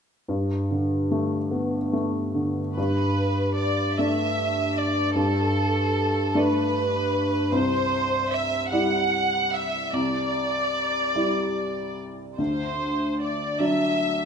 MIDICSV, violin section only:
0, 0, Header, 1, 2, 480
1, 0, Start_track
1, 0, Key_signature, 1, "major"
1, 0, Tempo, 823045
1, 169, Time_signature, 6, 3, 24, 8
1, 2088, Tempo, 790514
1, 4968, Tempo, 811908
1, 8472, End_track
2, 0, Start_track
2, 0, Title_t, "Violin section"
2, 0, Program_c, 0, 48
2, 1615, Note_on_c, 0, 71, 58
2, 2063, Note_off_c, 0, 71, 0
2, 2089, Note_on_c, 0, 74, 58
2, 2326, Note_on_c, 0, 76, 56
2, 2332, Note_off_c, 0, 74, 0
2, 2808, Note_off_c, 0, 76, 0
2, 2815, Note_on_c, 0, 74, 57
2, 3051, Note_off_c, 0, 74, 0
2, 3052, Note_on_c, 0, 69, 61
2, 3755, Note_off_c, 0, 69, 0
2, 3766, Note_on_c, 0, 71, 66
2, 4481, Note_off_c, 0, 71, 0
2, 4486, Note_on_c, 0, 72, 70
2, 4962, Note_on_c, 0, 76, 66
2, 4967, Note_off_c, 0, 72, 0
2, 5202, Note_off_c, 0, 76, 0
2, 5205, Note_on_c, 0, 78, 65
2, 5672, Note_off_c, 0, 78, 0
2, 5681, Note_on_c, 0, 76, 59
2, 5918, Note_on_c, 0, 74, 59
2, 5919, Note_off_c, 0, 76, 0
2, 7128, Note_off_c, 0, 74, 0
2, 7370, Note_on_c, 0, 72, 55
2, 7831, Note_off_c, 0, 72, 0
2, 7854, Note_on_c, 0, 74, 48
2, 8088, Note_on_c, 0, 76, 57
2, 8092, Note_off_c, 0, 74, 0
2, 8472, Note_off_c, 0, 76, 0
2, 8472, End_track
0, 0, End_of_file